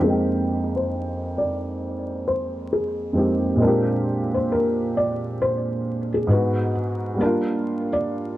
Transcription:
0.00 F2 G#3 A#3
0.04 C4 D#4 G#4
0.10 G5
0.76 C5
1.38 D5
2.28 C5
2.73 G#4
3.13 F2 G#3 A#3 C4
3.17 D#4 G4
3.56 A#2 G#3
3.60 C4 D4 A#4
3.65 F4 G4
4.34 C5
4.52 A#4
4.97 D5
5.42 C5
6.14 G#4
6.27 G#2 G#3 B3 B4
6.32 D#4 F#4
7.14 G3 A#3
7.21 D4 A#4
7.26 F4
7.93 D5

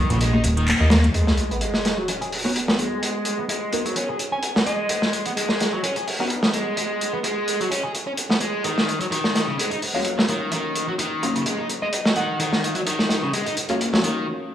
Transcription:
0.10 A#1 C#3, closed hi-hat
0.21 G#3, closed hi-hat
0.34 D#4, high conga
0.44 D#1, closed hi-hat
0.57 D#3, closed hi-hat
0.68 clap, closed hi-hat, high conga
0.80 D#2 D#4
0.90 A#3, snare, closed hi-hat, low conga
1.04 closed hi-hat, high conga
1.14 G#3, closed hi-hat, sub drop
1.27 snare
1.37 closed hi-hat
1.51 B3, closed hi-hat
1.61 G#3, closed hi-hat
1.74 snare
1.85 snare, closed hi-hat
1.98 F#3
2.08 C#4, closed hi-hat
2.21 G#4, closed hi-hat
2.32 open hi-hat
2.45 B3 C#4 D#4 F#4 A#4
2.56 closed hi-hat
2.68 B3, snare
2.79 G#3, closed hi-hat
3.02 G#3, closed hi-hat
3.25 closed hi-hat
3.39 B3
3.49 G#3, closed hi-hat
3.73 B3 D#4 F#4 A#4, closed hi-hat
3.85 F#3, closed hi-hat
3.96 C#4, closed hi-hat
4.09 G#4
4.19 closed hi-hat
4.32 C#4 G#5
4.43 G#5, closed hi-hat
4.56 B3, snare
4.66 G#3 D#5, closed hi-hat
4.89 G#3, closed hi-hat
5.02 snare
5.13 closed hi-hat
5.26 B3, closed hi-hat
5.37 G#3, closed hi-hat
5.49 snare
5.60 snare, closed hi-hat
5.73 F#3
5.83 C#4, closed hi-hat
5.96 G#4, closed hi-hat
6.07 closed hi-hat, open hi-hat
6.20 B3 C#4 D#4 F#4 A#4
6.30 closed hi-hat
6.43 B3, snare
6.54 G#3, closed hi-hat
6.77 G#3, closed hi-hat
7.01 closed hi-hat
7.13 B3
7.24 G#3, closed hi-hat
7.48 closed hi-hat
7.60 F#3, closed hi-hat
7.71 C#4, closed hi-hat
7.83 G#4
7.95 closed hi-hat
8.07 C#4
8.17 closed hi-hat
8.30 B3, snare
8.41 G#3, closed hi-hat
8.64 D#3, closed hi-hat
8.78 snare
8.89 closed hi-hat
9.01 F#3, closed hi-hat
9.11 D#3, closed hi-hat
9.24 snare
9.35 snare, closed hi-hat
9.48 C#3
9.59 G#3, closed hi-hat
9.71 D#4, closed hi-hat
9.82 open hi-hat
9.95 F#3 G#3 A#3 C#4 F4
10.05 closed hi-hat
10.18 F#3, snare
10.28 D#3, closed hi-hat
10.52 D#3, closed hi-hat
10.76 closed hi-hat
10.88 F#3
10.99 D#3, closed hi-hat
11.23 F#3 A#3 C#4 F4, closed hi-hat
11.35 C#3, closed hi-hat
11.46 G#3, closed hi-hat
11.58 D#4
11.70 closed hi-hat
11.82 G#3 D#5
11.93 D#5, closed hi-hat
12.05 F#3, snare
12.16 D#3 F#5, closed hi-hat
12.40 D#3, closed hi-hat
12.53 snare
12.64 closed hi-hat
12.75 F#3, closed hi-hat
12.87 D#3, closed hi-hat
12.99 snare
13.09 snare, closed hi-hat
13.23 C#3
13.33 G#3, closed hi-hat
13.46 D#4, closed hi-hat
13.57 closed hi-hat
13.69 F#3 G#3 A#3 C#4 F4, closed hi-hat
13.81 closed hi-hat
13.93 F#3, snare
14.04 D#3, closed hi-hat
14.17 closed hi-hat

